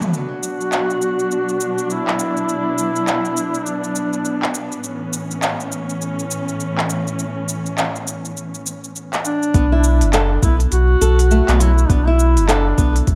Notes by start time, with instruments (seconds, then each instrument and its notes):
0.02 mid tom, shaker
0.13 string section B2 F#3 B3 D4, duduk F#4, shaker
0.43 shaker
0.61 shaker
0.72 clap, shaker
0.90 shaker
1.02 shaker
1.19 shaker
1.31 shaker
1.49 shaker
1.61 shaker
1.78 shaker
1.90 duduk E4, shaker
2.07 clap
2.19 shaker
2.37 shaker
2.49 shaker
2.78 shaker
2.96 shaker
3.08 clap, shaker
3.25 shaker
3.37 shaker
3.54 shaker
3.66 duduk D4, shaker
3.84 shaker
3.96 shaker
4.13 shaker
4.25 shaker
4.42 clap
4.54 shaker
4.72 shaker
4.83 string section A2 E3 C#4, shaker
5.13 shaker
5.31 shaker
5.42 clap, shaker
5.60 shaker
5.72 shaker
5.90 shaker
6.02 shaker
6.19 shaker
6.31 shaker
6.49 shaker
6.60 shaker
6.78 clap
6.90 shaker
7.07 shaker
7.19 shaker
7.49 shaker
7.66 shaker
7.78 clap, shaker
7.96 shaker
8.07 shaker
8.25 shaker
8.37 shaker
8.55 shaker
8.66 shaker
8.84 shaker
8.96 shaker
9.13 clap, shaker
9.25 duduk D4, shaker
9.43 shaker
9.54 sub bass B1, nylon-string guitar B3, kick, open hi-hat, shaker
9.72 nylon-string guitar E4
9.84 shaker
10.01 sub bass F#1, open hi-hat, shaker
10.13 nylon-string guitar A4, clap, open hi-hat, shaker
10.43 sub bass B1, nylon-string guitar B3, duduk E4, kick, open hi-hat, shaker
10.60 open hi-hat, shaker
10.72 sub bass B1, duduk F#4, open hi-hat, shaker
11.01 sub bass B1, nylon-string guitar A4, open hi-hat, shaker
11.19 open hi-hat, shaker
11.31 nylon-string guitar A3, shaker
11.48 sub bass B1, nylon-string guitar B3, clap, open hi-hat
11.60 nylon-string guitar F#3, duduk E4, open hi-hat, shaker
11.78 shaker
11.89 sub bass B1, nylon-string guitar B3, duduk D4, kick, open hi-hat, shaker
12.07 duduk E4, nylon-string guitar E4
12.19 shaker
12.36 sub bass F#1, open hi-hat, shaker
12.48 duduk D4, nylon-string guitar A4, clap, open hi-hat, shaker
12.78 sub bass B1, nylon-string guitar B3, kick, open hi-hat, shaker
12.96 open hi-hat, shaker
13.07 sub bass B1, kick, open hi-hat, shaker